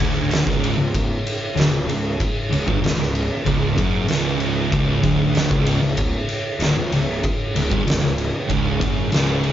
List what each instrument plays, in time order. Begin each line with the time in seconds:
Already playing: tonewheel organ C#3 D#4 G#4
0.00 picked electric bass D1, distorted electric guitar D2, kick, ride
0.31 snare, ride
0.45 picked electric bass C#1, distorted electric guitar C#2, kick
0.50 snare
0.64 ride
0.77 picked electric bass C#1, distorted electric guitar C#2
0.94 kick, ride
1.27 ride
1.55 picked electric bass D1, distorted electric guitar D2, ride
1.60 snare
1.71 picked electric bass C#1, distorted electric guitar C#2
1.86 picked electric bass C#1, distorted electric guitar C#2, ride
2.20 kick, ride
2.50 picked electric bass C#1, distorted electric guitar C#2, ride
2.66 picked electric bass G1, distorted electric guitar G2, kick
2.81 picked electric bass C#1, distorted electric guitar C#2, ride
2.86 snare
2.97 picked electric bass C#1, distorted electric guitar C#2
3.02 snare
3.15 ride
3.45 picked electric bass C#1, distorted electric guitar C#2, kick, ride
3.77 picked electric bass F#1, distorted electric guitar F#2, kick, ride
4.07 picked electric bass C#1, distorted electric guitar C#2, snare, ride
4.40 ride
4.71 picked electric bass C#1, distorted electric guitar C#2, kick, ride
5.02 picked electric bass D1, distorted electric guitar D2, kick, ride
5.35 snare, ride
5.50 picked electric bass C#1, distorted electric guitar C#2, kick
5.66 ride
5.82 picked electric bass C#1, distorted electric guitar C#2
5.97 kick, ride
6.29 ride
6.59 picked electric bass D1, distorted electric guitar D2, snare, ride
6.77 picked electric bass C#1, distorted electric guitar C#2
6.92 picked electric bass C#1, distorted electric guitar C#2, ride
7.23 kick, ride
7.55 picked electric bass C#1, distorted electric guitar C#2, ride
7.71 picked electric bass G1, distorted electric guitar G2, kick
7.86 picked electric bass C#1, distorted electric guitar C#2, ride
7.90 snare
8.03 picked electric bass C#1, distorted electric guitar C#2, snare
8.18 ride
8.49 picked electric bass C#1, distorted electric guitar C#2, kick, ride
8.80 picked electric bass F#1, distorted electric guitar F#2, kick, ride
9.11 picked electric bass C#1, distorted electric guitar C#2, snare, ride
9.44 ride